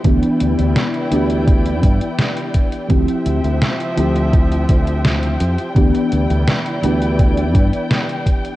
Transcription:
<<
  \new Staff \with { instrumentName = "String section" } { \time 4/4 \key e \phrygian \tempo 4 = 84 << { g''1 | g''1~ | g''1 | } \\ { <e' b' d''>1 | <f c'' e''>1 | <e' b' d''>1 | } >> }
  \new Staff \with { instrumentName = "FM electric piano" } { \time 4/4 \key e \phrygian <e b d' g'>4. <e b d' g'>2~ <e b d' g'>8 | <f c' e' g'>4. <f c' e' g'>2~ <f c' e' g'>8 | <e b d' g'>4. <e b d' g'>2~ <e b d' g'>8 | }
  \new Staff \with { instrumentName = "Fretless electric bass" } { \clef bass \time 4/4 \key e \phrygian d,16 r16 d,16 d,16 r8 d,4 g,16 r4 r16 | d,16 r16 d,16 d,16 r8 d,4 d,4 f,16 r16 | d,16 r16 d,16 d,16 r8 d,4 g,16 r4 r16 | }
  \new DrumStaff \with { instrumentName = "Drums" } \drummode { \time 4/4 <hh bd>16 hh16 hh16 hh16 <hh sn>16 hh16 hh16 hh16 <hh bd>16 hh16 <hh bd>16 hh16 <hh sn>16 hh16 <hh bd>16 hh16 | <hh bd>16 hh16 hh16 hh16 <hh sn>16 hh16 hh16 hh16 <hh bd>16 hh16 <hh bd>16 hh16 <hh sn>16 hh16 hh16 hh16 | <hh bd>16 hh16 hh16 hh16 <hh sn>16 hh16 hh16 hh16 <hh bd>16 hh16 <hh bd>16 hh16 <hh sn>16 hh16 <hh bd>16 hh16 | }
>>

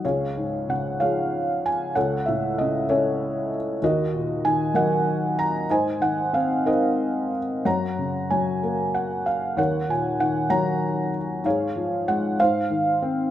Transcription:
<<
  \new Staff \with { instrumentName = "Felt piano" } { \time 6/8 \key des \major \tempo 4. = 64 << { des''4 ges''8 f''4 aes''8 | ges''8 e''8 ees''8 cis''4 r8 | ees''4 aes''8 ges''4 bes''8 | aes''8 ges''8 f''8 ees''4 r8 |
bes''4 aes''4 ges''8 f''8 | ges''8 aes''8 ges''8 bes''4 r8 | des''4 ges''8 f''4. | } \\ { <aes' f''>4. <aes' des''>4. | <a' cis''>4. <e' a'>4. | <ges' bes'>4. <bes' ees''>4. | <c'' ees''>4. <bes' c''>4. |
<des'' ges''>4 des''4. r8 | <bes' des''>4. <des'' ges''>4. | <aes' f''>4. c''4. | } >> }
  \new Staff \with { instrumentName = "Felt piano" } { \clef bass \time 6/8 \key des \major des,8 aes,8 des8 f4. | cis,8 a,8 cis8 cis'4. | ees,8 bes,8 ees8 ges4. | aes,8 ees8 c'8 ees'4. |
ges,8 des8 ges8 bes4. | ees,8 bes,8 ees8 ges4. | aes,8 f8 aes8 aes,8 ees8 c'8 | }
>>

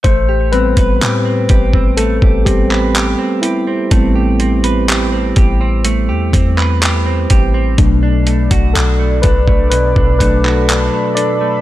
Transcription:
<<
  \new Staff \with { instrumentName = "Analog synth pad" } { \time 4/4 \key a \dorian \tempo 4 = 62 r1 | r1 | <a' d'' b''>1 | }
  \new Staff \with { instrumentName = "Clean electric guitar" } { \time 4/4 \key a \dorian a16 g'16 c'16 b'16 g'16 c'16 g'16 c'16 a16 g'16 c'16 b'16 g'16 c'16 g'16 c'16 | a16 g'16 c'16 b'16 g'16 c'16 g'16 c'16 a16 g'16 c'16 b'16 g'16 c'16 g'16 c'16 | b,16 d'16 a16 fis'16 d'16 a16 d'16 a16 b,16 d'16 a16 fis'16 d'16 a16 d'16 a16 | }
  \new Staff \with { instrumentName = "Tine electric piano" } { \time 4/4 \key a \dorian c''8 b'4. a'8 g'4 e'8~ | e'4. r2 r8 | r4 a'8 b'8 b'8 b'4 d''8 | }
  \new Staff \with { instrumentName = "Tine electric piano" } { \time 4/4 \key a \dorian r8 <g b c'>8 r4. <g b c'>8 r4 | <g b c'>1 | <fis a d'>2~ <fis a d'>8 <fis a d'>8 r4 | }
  \new Staff \with { instrumentName = "808-style bass" } { \clef bass \time 4/4 \key a \dorian a,,8. a,,16 a,8 a,,8. a,,4 r8. | a,,4. a,,8. e,16 e,4 a,,8 | b,,8. b,,16 b,,8 b,,8. b,,4 r8. | }
  \new DrumStaff \with { instrumentName = "Drums" } \drummode { \time 4/4 <hh bd>8 hh16 <hh bd>16 <hc hh>8 <hh bd>16 bd16 hh16 bd16 <hh bd>16 hc16 <hc hh>8 hh8 | <hh bd>8 hh16 hh16 <hc hh>8 <hh bd>8 hh8 <hh bd>16 hc16 <hc hh>8 <hh bd>8 | <hh bd>8 hh16 <hh bd>16 <hc hh>8 <hh bd>16 bd16 hh16 bd16 <hh bd>16 hc16 <hc hh>8 hh8 | }
>>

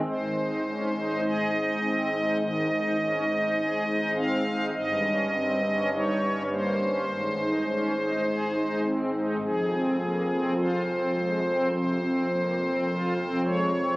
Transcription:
<<
  \new Staff \with { instrumentName = "Pipe organ" } { \time 4/4 \key aes \major \tempo 4 = 52 << { c''4 ees''4 ees''4. f''8 | ees''4 des''8 c''2 r8 | aes'4 c''4 c''4. des''8 | } \\ { aes,16 ees'16 des'16 ees'16 aes'16 ees'16 c'16 ees'16 ees16 ees'16 des'16 ees'16 aes'16 ees'16 c'16 ees'16 | g,16 des'16 c'16 des'16 ees'16 des'16 bes16 des'16 aes,16 ees'16 des'16 ees'16 aes'16 ees'16 c'16 ees'16 | f,16 c'16 bes16 c'16 f'16 c'16 aes16 c'16 c16 c'16 bes16 c'16 f'16 c'16 aes16 c'16 | } >> }
  \new Staff \with { instrumentName = "Pipe organ" } { \clef bass \time 4/4 \key aes \major aes,,1 | g,,2 aes,,2 | f,,1 | }
>>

